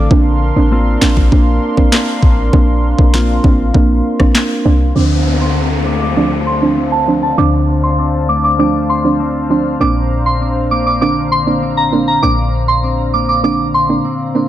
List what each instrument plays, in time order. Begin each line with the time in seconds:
Already playing: clean electric guitar D3 A3 C4 F4
0.11 808-style bass A#1, synth pluck A#3 C4 D4, analog synth pad D4 A#4 F5 C6, kick
0.56 808-style bass A1, synth pluck A#3 C4 D4
0.71 clean electric guitar A#3 C4 F4
1.02 808-style bass A1, synth pluck A#3 C4 D4, snare, clap
1.17 kick
1.32 808-style bass A#1, synth pluck A#3 C4 D4, clean electric guitar A#3, kick
1.77 synth pluck A#3 C4 D4, kick
1.92 snare, clap
2.22 808-style bass A1, kick
2.53 808-style bass A#1, synth pluck A#3 C4 D4, kick
2.98 808-style bass A#1, synth pluck A#3 C4 D4, kick
3.14 clean electric guitar A#3 C4 F4, snare
3.44 808-style bass A1, synth pluck A#3 C4 D4, kick
3.74 808-style bass A#1, synth pluck A#3 C4 D4, clean electric guitar A#3, kick
4.19 synth pluck A#3 C4 D4, kick, cross-stick
4.35 snare, clap
4.65 808-style bass C2, synth pluck A#3 C4 D4
4.95 808-style bass D2, clean electric guitar D3, synth pluck F3 C4 D4, analog synth pad D4 C5 F5 A5, synth bell D6, downlifter
5.41 synth bell C6
5.56 clean electric guitar C4
5.86 clean electric guitar A3, synth bell D6
6.01 synth bell D6
6.17 synth pluck F3 C4 D4, clean electric guitar A3, synth bell D6
6.47 synth bell C6
6.62 synth pluck F3 C4 D4
6.77 clean electric guitar C4
6.92 synth bell A5
7.07 synth pluck F3 C4 D4
7.23 synth bell A5
7.38 808-style bass D2, clean electric guitar D3, synth pluck F3 C4 D4, synth bell D6
7.83 synth bell C6
7.99 clean electric guitar C4
8.29 clean electric guitar A3, synth bell D6
8.44 synth bell D6
8.59 synth pluck F3 C4 D4, clean electric guitar A3, synth bell D6
8.89 synth bell C6
9.04 synth pluck F3 C4 D4
9.20 clean electric guitar C4
9.50 synth pluck F3 C4 D4
9.80 808-style bass A#1, clean electric guitar A#2, synth pluck A#3 C4 D4, analog synth pad A#5, synth bell D6
10.26 synth bell C6
10.41 clean electric guitar C4
10.71 clean electric guitar A#3, synth bell D6
10.86 synth bell D6
11.01 clean electric guitar D3, synth pluck A#3 C4 D4, synth bell D6
11.32 synth bell C6
11.47 synth pluck A#3 C4 D4
11.62 clean electric guitar C4
11.77 synth bell A#5
11.92 synth pluck A#3 C4 D4
12.08 synth bell A#5
12.22 808-style bass A#1, clean electric guitar A#2, synth pluck A#3 C4 D4, synth bell D6
12.68 synth bell C6
12.84 clean electric guitar C4
13.14 clean electric guitar A#3, synth bell D6
13.29 synth bell D6
13.44 clean electric guitar D3, synth pluck A#3 C4 D4, synth bell D6
13.74 synth bell C6
13.89 synth pluck A#3 C4 D4
14.05 clean electric guitar C4
14.35 synth pluck A#3 C4 D4